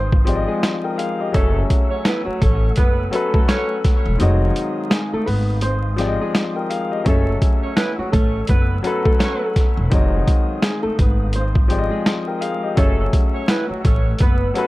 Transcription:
Already playing: G#1 D#3 G#3 C4 D#4 G#4 C5 D#5 F5 D#6
0.12 kick
0.25 F3 C4 G4 G#4, closed hi-hat
0.29 D5
0.36 D#5
0.47 G#3 G#4
0.63 snare, closed hi-hat
0.84 A#4 G5
0.98 G#4 F5, closed hi-hat
1.20 G4 D#5
1.32 F#1 F#3 A3 C#4 G#4 A4 C#5 F#5 E6, kick, closed hi-hat
1.36 E5
1.70 kick, closed hi-hat
1.90 C#4 C#5
2.05 E3 B3 E4 B4, snare, closed hi-hat
2.25 F#3 F#4, muted upright bass stroke
2.40 A1 A3 C#4 A4 C#5, kick, closed hi-hat
2.76 F#1 B3 B4, kick, closed hi-hat
3.11 F#3 A3 C#4 F#4 A4, closed hi-hat
3.15 B4
3.34 A3 A4, kick
3.48 C#4 C#5, snare, closed hi-hat
3.84 kick, snare, closed hi-hat
4.06 E1
4.18 F1 D#3 G#3 C4 D#4 F#4 G#4 F5 D#6, closed hi-hat
4.22 F#3 D#5
4.56 closed hi-hat
4.90 G#3 G#4, snare, closed hi-hat
5.13 A3 A4, muted upright bass stroke
5.26 G#1 B3 B4, open hi-hat
5.61 C4 C5, closed hi-hat
5.96 F3 C4 G4 G#4, snare, closed hi-hat
6.00 D5
6.07 D#5
6.21 G#3 G#4
6.35 snare, closed hi-hat
6.56 A#4 G5
6.70 G#4 F5, closed hi-hat
6.92 G4 D#5
7.04 F#1 F#3 A3 C#4 G#4 A4 C#5 F#5, kick, closed hi-hat
7.08 A3 A4 E5
7.42 kick, closed hi-hat
7.62 C#4 C#5
7.76 E3 B3 E4 B4, snare, closed hi-hat
7.99 F#3 F#4, muted upright bass stroke
8.12 A1 A3 C#4 A4 C#5, kick, closed hi-hat
8.47 F#1 B3 B4, kick, closed hi-hat
8.83 F#3 A3 C#4 F#4 A4, closed hi-hat
8.87 B4
9.05 A3 A4, kick
9.20 C#4 C#5, snare, closed hi-hat
9.56 kick, snare, closed hi-hat
9.77 E1
9.90 F1 D#3 F#3 G#3 C4 D#4 F#4 G#4 F5 D#6, kick, closed hi-hat
9.94 D#5
10.27 kick, closed hi-hat
10.62 G#3 G#4, snare, closed hi-hat
10.83 A3 A4, muted upright bass stroke
10.99 G#1 B3 B4, kick, closed hi-hat
11.33 C4 C5, closed hi-hat
11.55 kick
11.68 F3 C4 G4 G#4, closed hi-hat
11.72 D5
11.79 D#5
11.90 G#3 G#4
12.06 snare, closed hi-hat
12.27 A#4 G5
12.41 G#4 F5, closed hi-hat
12.63 G4 D#5
12.75 F#1 F#3 A3 C#4 G#4 A4 C#5 F#5 E6, kick, closed hi-hat
12.79 E5
13.13 kick, closed hi-hat
13.33 C#4 C#5
13.48 E3 B3 E4 B4, snare, closed hi-hat
13.68 F#3 F#4, muted upright bass stroke
13.83 A1 A3 C#4 A4 C#5, kick, closed hi-hat
14.19 F#1 B3 B4, kick, closed hi-hat
14.54 F#3 A3 C#4 F#4 A4, closed hi-hat
14.58 B4

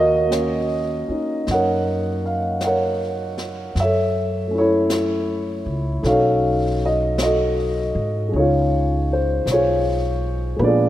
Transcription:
Already playing: D#2 C#5 D#5 F5
0.00 F#4 A#4
0.27 A#3 C#4
0.32 brush sweep, snare, hi-hat pedal
0.38 F#4
1.08 C#4 D#4, muted upright bass stroke
1.47 F#2, brush sweep, snare
1.51 A#4 C#5 F#5
2.26 F5
2.61 F#5, brush sweep, snare, hi-hat pedal
2.66 A#4 C#5
3.38 snare
3.75 F#2, brush sweep, snare
3.80 A4 C#5 E5
4.47 A3 C#4
4.54 E4 A4
4.58 E4 C#5
4.90 brush sweep, snare, hi-hat pedal
5.66 C#2
6.02 B1 C#4 A4 F5, brush sweep, snare
6.06 D#4 F#4 A4 C#5
6.85 D#5
7.18 brush sweep, snare, hi-hat pedal
7.22 F#4 A4 D#5
7.95 G#2
8.29 G#3 C#4
8.33 C#2 D#4 C#5, brush sweep
8.38 F4 G#4
9.13 C5
9.46 B1, brush sweep, snare, hi-hat pedal
9.51 F4 G#4 C#5
10.56 A#1 G#3 B3 B4
10.61 D4 D5, brush sweep
10.66 F4 G#4

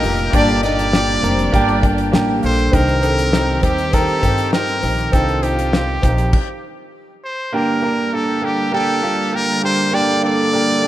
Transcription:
Already playing: G3 A#3 D4 D#4 F4 G4 A4 A#4 D#5
0.03 F1 G2 A#2 A#3 D4 G4, open hi-hat
0.19 closed hi-hat
0.32 G1 A#3 D4 G4 D5, kick, closed hi-hat
0.48 closed hi-hat
0.62 A#3 D4 D#4 G4 D5 D#5, closed hi-hat
0.78 snare, closed hi-hat
0.92 A#3 D4 G4 D5, snare
1.22 F1 A#3 C4 D4 A#4 C5, closed hi-hat
1.39 closed hi-hat
1.52 G1 A#3 D4 G4 D5, kick, closed hi-hat
1.69 closed hi-hat
1.82 A#3 D4 G4, kick, closed hi-hat
1.98 closed hi-hat
2.12 A1 A#3 D4 G4, snare
2.42 A#1 A#3 D4 A4 C5, open hi-hat
2.59 closed hi-hat
2.72 C2 G2 D#3 C4 D#4 G4 A#4, kick, closed hi-hat
2.88 closed hi-hat
3.02 C4 D#4 A4, closed hi-hat
3.18 snare, closed hi-hat
3.32 C4 D#4 G4, snare
3.62 D#2 C4 D#4 G4, kick, closed hi-hat
3.78 closed hi-hat
3.92 C4 D#4 A4 A#4, kick, closed hi-hat
4.08 closed hi-hat
4.21 G2 C4 D#4 G4, kick, closed hi-hat
4.38 closed hi-hat
4.53 C4 D#4 G4 A#4, snare
4.68 closed hi-hat
4.82 A#1 C4 D#4 G4, open hi-hat
4.99 closed hi-hat
5.12 C2 G2 C4 D#4 F4 G4 A4, kick, closed hi-hat
5.29 closed hi-hat
5.42 C4 D#4 G4, closed hi-hat
5.58 snare, closed hi-hat
5.73 C4 D#4 G4, snare
6.02 A#1 C4 D#4 G4, kick, closed hi-hat
6.18 closed hi-hat
6.33 kick, crash
7.24 C5
7.52 G2 D3 G3 A#3 D4 G4 A#4
7.82 A#3 D4 A#4
8.13 A#3 D4 A4
8.42 A#3 D4 G4
8.72 A#3 D4 G4 A4
9.02 A#3 D4 F4
9.32 A#3 D4 G4 A#4
9.62 A#3 D4 G4 C5
9.92 G2 D3 A#3 D4 G4 A4 D5
10.23 A#3 D4 A4 D5
10.53 A#3 D4 G4
10.83 A#3 D4 G4

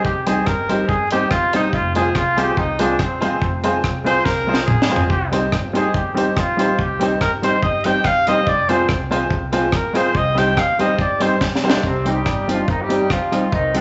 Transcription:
0.05 C2 G4, kick
0.26 G3 C4 D#4 G4 G#4 C5, closed hi-hat
0.46 G1 G4 A#4 C5, kick, cross-stick
0.69 G3 C4 D#4 G4 C5, closed hi-hat
0.88 G1 G4 G#4 C5, muted hollow-body jazz guitar stroke, kick
1.10 G3 C4 D#4 G4 C5, closed hi-hat
1.30 E1 F4 G4 C5, muted hollow-body jazz guitar stroke, kick, cross-stick
1.53 G3 C4 D#4 G4 C5, closed hi-hat
1.73 F1 F4, kick
1.95 G#3 C4 F4 G#4 C5, closed hi-hat
2.15 C2 F4 G#4 C5, kick, cross-stick
2.36 G#3 C4 F4 G4 G#4 C5, closed hi-hat
2.56 C2 D#4 G#4 C5, kick
2.79 G#3 C4 D4 F4 G#4 C5, closed hi-hat
2.99 E1 C4 G#4 C5, kick, cross-stick
3.20 G#3 C4 F4 G#4 C5, closed hi-hat
3.42 F1, kick
3.64 G#3 C4 F4 G#4 C5, closed hi-hat
3.84 C2 G#4 C5, kick, cross-stick
4.04 G#3 C4 F4 G#4 C5, closed hi-hat
4.25 C2 G#4 A#4 C5, muted hollow-body jazz guitar stroke, kick, snare
4.47 G#3 C4 F4 G#4 C5
4.54 snare
4.62 G#4 A#4
4.66 G#1 G#4 C5, muted hollow-body jazz guitar stroke, kick, mid tom
4.82 snare
4.89 G1 G#3 C4 F4 G#4 C5
4.96 floor tom
5.10 C2 G4, kick
5.32 G3 C4 D#4 G4 C5, closed hi-hat
5.52 G1 G4 C5, kick, cross-stick
5.73 G3 C4 D#4 G4 G#4 C5, closed hi-hat
5.94 G1 G4 C5, kick
6.14 G3 C4 D#4 G4 C5, closed hi-hat
6.36 A#1 F4 G4 C5, kick, cross-stick
6.57 G3 C4 D#4 G4 C5, closed hi-hat
6.79 C2 G4, kick
7.00 G3 C4 D#4 G4 C5, closed hi-hat
7.21 G1 G4 A#4 C5, kick, cross-stick
7.42 G3 C4 D#4 G4 C5, closed hi-hat
7.63 G1 G4 C5 D#5, muted hollow-body jazz guitar stroke, kick
7.84 G3 C4 D#4 G4 C5 G5, closed hi-hat
8.04 E1 G4 C5 F5, muted hollow-body jazz guitar stroke, kick, cross-stick
8.27 G3 C4 D#4 G4 C5 D#5, cross-stick, closed hi-hat
8.47 F1 D5, kick
8.69 G#3 C4 F4 G#4 C5, closed hi-hat
8.89 C2 G#4 C5, kick, cross-stick
9.11 G#3 C4 F4 G#4 C5, closed hi-hat
9.30 C2 G#4 C5, kick
9.52 G#3 C4 F4 G#4 C5, closed hi-hat
9.72 G#1 G#4 A#4 C5, kick, cross-stick
9.93 G#3 C4 F4 G#4 C5, closed hi-hat
10.15 C2 D#5, kick
10.35 G3 C4 D#4 G4 C5 G5, closed hi-hat
10.57 D#2 G4 C5 F5, kick, cross-stick
10.79 G3 C4 D#4 G4 C5 D#5, closed hi-hat
10.97 G1 G4 C5 D5, muted hollow-body jazz guitar stroke, kick
11.20 G3 C4 D#4 G4 C5, closed hi-hat
11.41 B1 G4 C5, muted hollow-body jazz guitar stroke, kick, snare
11.56 snare
11.63 D3 G3 A#3 C4 D4 D#4 G4 C5
11.70 snare
11.83 C2 C3 G3 C4, kick
12.05 G3 C4 D#4 G4, closed hi-hat
12.26 G1, kick, cross-stick
12.48 F3 G3 C4 D#4 F4 G4, closed hi-hat
12.52 D4
12.68 G1 D#3 C4 D#4, kick
12.81 G3 D#4 G4
12.89 G3 C4 D#4 G4, closed hi-hat
13.10 B1 F3 C4 F4, kick, cross-stick
13.32 G3 C4 D#4 G4, cross-stick, closed hi-hat
13.52 C2 D#3 C4 D#4, kick
13.74 D3 G3 A#3 C4 D4 D#4 G4, closed hi-hat

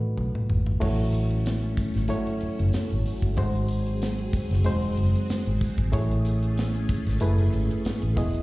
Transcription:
Already playing: A2 A3 D#4 F#4 A4 B4
0.18 B1, mid tom
0.35 mid tom
0.50 G#1, floor tom
0.66 floor tom
0.80 A1 F#3 A3 C#4 E4 F#4 C#5, kick, crash, tambourine
0.99 closed hi-hat
1.13 closed hi-hat, tambourine
1.31 closed hi-hat
1.46 snare, tambourine
1.62 closed hi-hat
1.77 muted fingered electric bass stroke, kick, closed hi-hat, tambourine
1.94 G#1, snare, closed hi-hat
2.08 A3 E4 F#4 C#5, closed hi-hat, tambourine
2.27 closed hi-hat
2.41 muted fingered electric bass stroke, closed hi-hat
2.59 F#1, closed hi-hat
2.73 muted fingered electric bass stroke, snare, tambourine
2.90 G#1, closed hi-hat
3.06 open hi-hat, tambourine
3.22 G1, kick, closed hi-hat
3.37 G#1 G#3 C4 D#4 F#4 G#4 C5, kick, closed hi-hat, tambourine
3.55 closed hi-hat
3.68 closed hi-hat, tambourine
3.87 closed hi-hat
4.02 snare, tambourine
4.19 closed hi-hat
4.33 muted fingered electric bass stroke, kick, closed hi-hat, tambourine
4.51 F#1, snare, closed hi-hat
4.64 E1 G#3 D#4 F#4 C5, closed hi-hat, tambourine
4.82 closed hi-hat
4.97 F#1, closed hi-hat
5.15 closed hi-hat
5.30 muted fingered electric bass stroke, snare, tambourine
5.46 G#1, closed hi-hat
5.61 kick, open hi-hat, tambourine
5.78 G#1, kick, closed hi-hat
5.92 A1 A3 C#4 E4 G#4 C#5, kick, closed hi-hat, tambourine
6.11 closed hi-hat
6.25 closed hi-hat, tambourine
6.43 closed hi-hat
6.57 snare, tambourine
6.75 closed hi-hat
6.89 muted fingered electric bass stroke, kick, closed hi-hat, tambourine
7.06 G#1, snare, closed hi-hat
7.20 F#1 A3 E4 G#4 B4, closed hi-hat, tambourine
7.38 closed hi-hat
7.53 G#1, closed hi-hat, tambourine
7.71 closed hi-hat
7.85 muted fingered electric bass stroke, snare, tambourine
8.02 A1, closed hi-hat
8.16 E3 B3 E4 G#4 D#5, kick, open hi-hat, tambourine
8.35 closed hi-hat

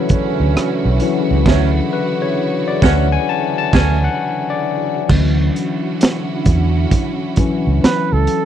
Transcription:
Already playing: C#3 D3 E3 F#3 A3 C#4 E4 F#4 A4 B4 C#5
0.09 muted fingered electric bass stroke, kick, closed hi-hat
0.40 D2
0.56 muted fingered electric bass stroke, cross-stick, closed hi-hat
0.85 B1
1.00 E3 F#3 C#4, closed hi-hat
1.31 C#2
1.46 D2 F#3 A3 C#4, kick, snare, crash
1.93 B4
2.22 C#5
2.68 D5
2.82 D2 F#3 A3 C#4 F#5, kick, snare
3.12 G#5
3.29 A5
3.58 A5
3.73 D2 F#3 A3 C#4 G#5, kick, snare, crash
4.04 F#5
4.50 D5
5.09 D2 D3 E3 F#3 C#4 E4 F#4, kick, crash
5.56 closed hi-hat
6.01 snare, closed hi-hat
6.45 E2, kick, closed hi-hat
6.91 kick, closed hi-hat
7.36 E3 F#3 C#4, muted fingered electric bass stroke, kick, closed hi-hat
7.67 C#2
7.84 B4, muted fingered electric bass stroke, snare, closed hi-hat
8.13 C#2 A4
8.27 closed hi-hat

